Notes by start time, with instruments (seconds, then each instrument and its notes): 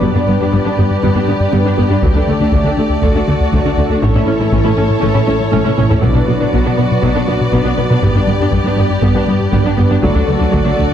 Already playing: analog synth pad D4 B4 D5, violin section D5
0.01 double bass section G1, cello section G2, analog synth bass G2, viola section G3 B3, analog synth pad G3, synth arpeggio sound G3, violin section G4
0.14 analog synth bass G2, cello section G2, viola section B3 D4, synth arpeggio sound B3
0.28 double bass section G1, cello section G2, analog synth bass G3, viola section B3, synth arpeggio sound D4
0.40 analog synth bass G2, cello section G2, viola section B3 D4, synth arpeggio sound G4
0.52 double bass section G1, cello section G2, analog synth bass G2, viola section G3 B3, synth arpeggio sound G3
0.65 cello section G2, analog synth bass G3, viola section B3 D4, synth arpeggio sound D4
0.78 double bass section G1, analog synth bass G2, cello section G2, viola section B3, synth arpeggio sound G4
0.91 analog synth bass G2
1.03 double bass section G1, cello section G2, analog synth bass G2, viola section G3 B3, synth arpeggio sound G3
1.15 analog synth bass G2, cello section G2, viola section B3 D4, synth arpeggio sound G4
1.28 double bass section G1, cello section G2, analog synth bass G3, viola section B3, synth arpeggio sound D4
1.40 analog synth bass G2
1.52 double bass section G1, analog synth bass G2, cello section G2, viola section G3 B3, synth arpeggio sound G3
1.65 cello section G2, analog synth bass G3, viola section B3 D4, synth arpeggio sound D4
1.77 double bass section G1, analog synth bass G2, cello section G2, viola section B3, synth arpeggio sound G4
1.90 analog synth bass G2, cello section G2, viola section B3 D4, synth arpeggio sound G4
2.01 analog synth bass D2, double bass section D2, cello section D2, synth arpeggio sound D3, viola section F#3 A3, analog synth pad A3 A4, violin section D5, taiko
2.14 analog synth bass D2, cello section D2, synth arpeggio sound F#3, viola section A3 D4
2.27 double bass section D2, cello section D2, analog synth bass D3, viola section A3, synth arpeggio sound A3
2.40 analog synth bass D2, cello section D2, viola section A3 D4, synth arpeggio sound D4
2.52 analog synth bass D2, double bass section D2, cello section D2, synth arpeggio sound D3, viola section F#3 A3, taiko
2.64 cello section D2, analog synth bass D3, synth arpeggio sound A3, viola section A3 D4
2.77 analog synth bass D2, double bass section D2, cello section D2, viola section A3, synth arpeggio sound D4
2.90 analog synth bass D2
3.02 analog synth bass D2, double bass section D2, cello section D2, synth arpeggio sound D3, viola section F#3 A3, violin section F#4, taiko
3.15 analog synth bass D2, cello section D2, viola section A3 D4, synth arpeggio sound D4
3.28 double bass section D2, cello section D2, analog synth bass D3, synth arpeggio sound A3, viola section A3
3.40 analog synth bass D2
3.52 cello section D2, analog synth bass D2, double bass section D2, synth arpeggio sound D3, viola section F#3 A3, taiko
3.65 cello section D2, analog synth bass D3, synth arpeggio sound A3, viola section A3 D4
3.77 analog synth bass D2, cello section D2, double bass section D2, viola section A3, synth arpeggio sound D4
3.90 analog synth bass D2, cello section D2, viola section A3 D4, synth arpeggio sound D4
4.02 double bass section A1, cello section A2, analog synth bass A2, analog synth pad E3 E4 C#5, viola section A3 C#4, synth arpeggio sound A3, violin section A4 C#5, taiko
4.15 cello section A2, analog synth bass A2, viola section C#4 E4, synth arpeggio sound C#4
4.26 double bass section A1, cello section A2, analog synth bass A3, viola section C#4, synth arpeggio sound E4
4.40 analog synth bass A2, cello section A2, viola section C#4 E4, synth arpeggio sound A4
4.52 double bass section A1, analog synth bass A2, cello section A2, viola section A3 C#4, synth arpeggio sound A3, taiko
4.64 cello section A2, analog synth bass A3, viola section C#4 E4, synth arpeggio sound E4
4.76 double bass section A1, analog synth bass A2, cello section A2, viola section C#4, synth arpeggio sound A4
4.90 analog synth bass A2
5.01 double bass section A1, analog synth bass A2, cello section A2, viola section A3 C#4, synth arpeggio sound A3, taiko
5.14 analog synth bass A2, cello section A2, viola section C#4 E4, synth arpeggio sound A4
5.26 double bass section A1, cello section A2, analog synth bass A3, viola section C#4, synth arpeggio sound E4
5.40 analog synth bass A2
5.52 double bass section A1, analog synth bass A2, cello section A2, viola section A3 C#4, synth arpeggio sound A3, taiko high
5.64 cello section A2, analog synth bass A3, viola section C#4 E4, synth arpeggio sound E4, taiko mid
5.77 double bass section A1, analog synth bass A2, cello section A2, viola section C#4, synth arpeggio sound A4, taiko mid
5.90 cello section A2, analog synth bass A2, viola section C#4 E4, synth arpeggio sound A4, taiko low
6.02 double bass section B1, cello section B2, analog synth bass B2, viola section F#3 B3, analog synth pad F#3 D4 B4 D5, synth arpeggio sound B3, violin section F#4 D5, taiko
6.15 analog synth bass B2, cello section B2, viola section B3 D4, synth arpeggio sound D4
6.28 double bass section B1, cello section B2, viola section B3, analog synth bass B3, synth arpeggio sound F#4
6.40 cello section B2, analog synth bass B2, viola section B3 D4, synth arpeggio sound B4
6.52 double bass section B1, cello section B2, analog synth bass B2, viola section F#3 B3, synth arpeggio sound B3, taiko
6.65 cello section B2, viola section B3 D4, analog synth bass B3, synth arpeggio sound F#4
6.77 double bass section B1, cello section B2, analog synth bass B2, viola section B3, synth arpeggio sound B4
6.92 analog synth bass B2
7.02 double bass section B1, analog synth bass B2, cello section B2, viola section F#3 B3, synth arpeggio sound B3, taiko
7.15 cello section B2, analog synth bass B2, viola section B3 D4, synth arpeggio sound B4
7.27 double bass section B1, cello section B2, viola section B3, analog synth bass B3, synth arpeggio sound F#4
7.41 analog synth bass B2
7.53 double bass section B1, cello section B2, analog synth bass B2, viola section F#3 B3, synth arpeggio sound B3, taiko
7.65 cello section B2, viola section B3 D4, analog synth bass B3, synth arpeggio sound F#4
7.77 double bass section B1, analog synth bass B2, cello section B2, viola section B3, synth arpeggio sound B4
7.90 analog synth bass B2, cello section B2, viola section B3 D4, synth arpeggio sound B4
8.02 double bass section G1, analog synth bass G2, cello section G2, synth arpeggio sound G3, viola section G3 B3, analog synth pad G3, violin section G4, taiko
8.15 analog synth bass G2, cello section G2, synth arpeggio sound B3, viola section B3 D4
8.27 double bass section G1, cello section G2, analog synth bass G3, viola section B3, synth arpeggio sound D4
8.40 analog synth bass G2, cello section G2, viola section B3 D4, synth arpeggio sound G4
8.53 double bass section G1, analog synth bass G2, cello section G2, synth arpeggio sound G3, viola section G3 B3, taiko
8.64 cello section G2, analog synth bass G3, viola section B3 D4, synth arpeggio sound D4
8.77 double bass section G1, analog synth bass G2, cello section G2, viola section B3, synth arpeggio sound G4
8.90 analog synth bass G2
9.02 double bass section G1, analog synth bass G2, cello section G2, synth arpeggio sound G3, viola section G3 B3, taiko
9.14 analog synth bass G2, cello section G2, viola section B3 D4, synth arpeggio sound G4
9.28 double bass section G1, cello section G2, analog synth bass G3, viola section B3, synth arpeggio sound D4
9.40 analog synth bass G2
9.52 double bass section G1, analog synth bass G2, cello section G2, viola section G3 B3, synth arpeggio sound G3, taiko
9.65 cello section G2, analog synth bass G3, viola section B3 D4, synth arpeggio sound D4
9.77 double bass section G1, analog synth bass G2, cello section G2, viola section B3, synth arpeggio sound G4
9.89 analog synth bass G2, cello section G2, viola section B3 D4, synth arpeggio sound G4
10.02 analog synth bass D2, double bass section D2, cello section D2, synth arpeggio sound D3, viola section F#3 A3, analog synth pad F#3 A4, violin section F#4 D5, taiko
10.15 analog synth bass D2, cello section D2, synth arpeggio sound F#3, viola section A3 D4
10.27 double bass section D2, cello section D2, analog synth bass D3, viola section A3, synth arpeggio sound A3
10.38 cello section D2, analog synth bass D2, viola section A3 D4, synth arpeggio sound D4
10.51 double bass section D2, cello section D2, analog synth bass D2, synth arpeggio sound D3, viola section F#3 A3, taiko
10.64 cello section D2, analog synth bass D3, viola section A3 D4, synth arpeggio sound A3
10.76 double bass section D2, analog synth bass D2, cello section D2, viola section A3, synth arpeggio sound D4